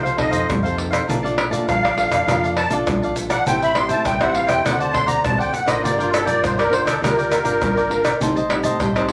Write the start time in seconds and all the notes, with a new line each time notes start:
Already playing: C2 F3 C5
0.03 A4 C5 F5, pandeiro, shaker
0.17 C4 D#4 A4 C5 D#5 F5, pandeiro, tamborim, surdo
0.30 F2 A4 C5 F5, pandeiro, shaker
0.48 F2 C3, pandeiro, tamborim, shaker, surdo
0.63 C4 D#4 A4 C5 F5, pandeiro, shaker
0.77 muted cavaquinho stroke, pandeiro
0.91 A4 C5 F5, pandeiro, tamborim, shaker
1.07 A#1 A#2 A3 D4 F4 A#4 D5 F5 A5, pandeiro, shaker, surdo
1.23 A3 D4 F4 D5 F5 A5, pandeiro, shaker
1.37 muted cavaquinho stroke, pandeiro, tamborim
1.50 A#2 A3 D4 F4 D5 F5 A5, pandeiro, shaker
1.67 A#1 F3 A#4 D5 F5 A5, pandeiro, tamborim, shaker, surdo
1.83 D5 F5 A5, pandeiro, tamborim, shaker
1.96 A3 D4 F4, pandeiro
2.10 F2 D5 F5 A5, pandeiro, tamborim, shaker
2.27 F2 A#2 A3 D4 F4 A#4 D5 F5 A5, pandeiro, tamborim, shaker, surdo
2.43 D5 F5 A5, pandeiro, shaker
2.56 A#4 D5 F5 A5, pandeiro, tamborim
2.70 A#1 A3 D4 F4 D5 F5 A5, pandeiro, shaker
2.87 A#1 F3, pandeiro, tamborim, shaker, surdo
3.02 D5 F5 A5, pandeiro, shaker
3.15 A3 D4 F4, muted cavaquinho stroke, pandeiro, shaker
3.30 D5 F5 F#5 A5, pandeiro, tamborim, shaker
3.46 A1 A2 G3 C4 E4 A4 C5 E5 G5, pandeiro, shaker, surdo
3.61 C5 E5 G5 B5, pandeiro, shaker
3.75 G3 C4 E4 C6, muted cavaquinho stroke, pandeiro, tamborim
3.88 A2 C5 E5 G5 A5, pandeiro, shaker
4.05 A1 E3 A4 C5 E5 G5, pandeiro, tamborim, shaker, surdo
4.20 G3 C4 E4 C5 E5 F#5 G5, pandeiro, tamborim, shaker
4.34 F5, pandeiro
4.47 E2 C5 E5 G5, pandeiro, tamborim, shaker
4.64 D2 D3 A3 C4 D4 F#4 C5 D5 F#5, pandeiro, tamborim, shaker, surdo
4.79 C5 D5 F#5 A5, pandeiro, shaker
4.93 D4 C5 D5 F#5 C6, pandeiro, tamborim, surdo
5.06 D2 C5 D5 F#5 A#5, pandeiro, shaker
5.23 A1 A2 A3 C4 F#4 A5, pandeiro, tamborim, shaker, surdo
5.38 D2 C5 D5 F#5 G5, pandeiro, shaker
5.52 C2 F#5, muted cavaquinho stroke, pandeiro, shaker
5.66 A1 D4 F4 A#4 C5 D5 D#5 F#5, pandeiro, tamborim, shaker
5.83 G1 G3 F4 A#4 D5 G5, pandeiro, shaker, surdo
5.98 D4 F4 A#4 D5 G5, pandeiro, shaker
6.11 A4, muted cavaquinho stroke, pandeiro, tamborim, shaker
6.25 G2 D4 F4 A#4 D5 G5, pandeiro, shaker
6.41 G1 D3 F4 A#4 C5 D5 G5, pandeiro, tamborim, shaker, surdo
6.58 A#4 D5 G5, pandeiro, tamborim, shaker
6.70 D4 F4 A#4 C5, pandeiro
6.85 D2 A4 A#4 D5 G5, pandeiro, tamborim, shaker
7.01 D2 G3 D4 F4 A#4 D5 G5, pandeiro, tamborim, shaker, surdo
7.17 A#4 D5 G5, pandeiro, shaker
7.31 F4 A#4 D5 G5, pandeiro, tamborim, shaker
7.44 G1 D4 F4 A#4 D5 G5, pandeiro, shaker
7.61 G#1 D3, pandeiro, tamborim, shaker, surdo
7.76 A#4 D5 G5, pandeiro, shaker
7.89 D4 F4 A#4, muted cavaquinho stroke, pandeiro
8.04 A#4 D5 G5, pandeiro, tamborim, shaker
8.20 A1 A2 G3 C4 D#4 G4 C5 D#5 A5, pandeiro, shaker, surdo
8.36 C5 D#5 A5, pandeiro, shaker
8.49 G3 C4 D#4, muted cavaquinho stroke, pandeiro, tamborim
8.63 A2 C5 D#5 A5, pandeiro, shaker
8.80 A1 A2 G4 C5 D#5 A5, pandeiro, tamborim, shaker, surdo
8.95 G3 C4 D#4 C5 D#5 A5, pandeiro, tamborim, shaker
9.08 pandeiro